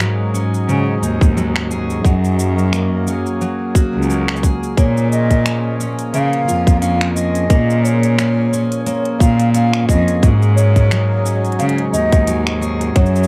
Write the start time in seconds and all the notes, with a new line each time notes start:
Already playing: G#2 F#3 A#3 C#4 D#4 G#4
0.00 F#3, finger snap
0.34 C#4, cabasa
0.54 cabasa
0.68 G#2 C#3, cabasa
1.02 D#2 D#4, cabasa
1.21 kick, cabasa
1.37 F#3, cabasa
1.56 finger snap
1.71 G#4, cabasa
1.90 cabasa
2.04 F#2 F#3, kick, cabasa
2.24 cabasa
2.35 A#3 C#4
2.39 cabasa
2.58 cabasa
2.73 A#3, finger snap, cabasa
3.07 C#4 G#4, cabasa
3.26 cabasa
3.41 F#3, cabasa
3.75 F#4, kick, cabasa
3.95 C#2
4.02 cabasa
4.09 A#3, cabasa
4.28 finger snap
4.36 cabasa
4.43 G#4, kick, cabasa
4.63 cabasa
4.77 A#2 F3 A#3 C#5, kick, closed hi-hat, cabasa
4.97 cabasa
5.11 D#5, cabasa
5.31 kick, closed hi-hat, cabasa
5.46 C#4, finger snap, closed hi-hat, cabasa
5.80 C#4, cabasa
5.99 closed hi-hat, cabasa
6.13 C#3 A#3 F5, closed hi-hat, cabasa
6.33 closed hi-hat
6.48 F2 F4, cabasa
6.67 kick, closed hi-hat, cabasa
6.81 C#4 F5, closed hi-hat, cabasa
7.01 finger snap, closed hi-hat
7.15 G#4 D#5, cabasa
7.35 closed hi-hat, cabasa
7.50 A#2 A#3, kick, closed hi-hat, cabasa
7.70 cabasa
7.83 C#5, cabasa
8.03 closed hi-hat, cabasa
8.18 C#4, finger snap, closed hi-hat, cabasa
8.53 C#4, cabasa
8.72 closed hi-hat, cabasa
8.85 A#3 C#5, closed hi-hat, cabasa
9.05 closed hi-hat
9.19 A#2 F4 F5, kick, cabasa
9.40 closed hi-hat, cabasa
9.54 C#4 F5, closed hi-hat, cabasa
9.73 finger snap, closed hi-hat
9.88 F2 G#4 D#5, kick, cabasa
10.08 closed hi-hat, cabasa
10.22 G#2 F#3, kick, closed hi-hat, cabasa
10.42 cabasa
10.56 C#5, cabasa
10.76 D#4, kick, closed hi-hat, cabasa
10.91 F#3, finger snap, closed hi-hat, cabasa
11.25 C#4, cabasa
11.45 closed hi-hat, cabasa
11.52 closed hi-hat
11.59 G#2 C#3 F5, closed hi-hat, cabasa
11.69 closed hi-hat
11.78 closed hi-hat
11.93 D#2 D#4 D#5, cabasa
12.12 kick, closed hi-hat, cabasa
12.27 F#3, closed hi-hat, cabasa
12.47 finger snap, closed hi-hat
12.61 G#4, cabasa
12.81 closed hi-hat, cabasa
12.95 F#2 F#3 C#5, kick, closed hi-hat, cabasa
13.06 cabasa
13.16 cabasa
13.23 cabasa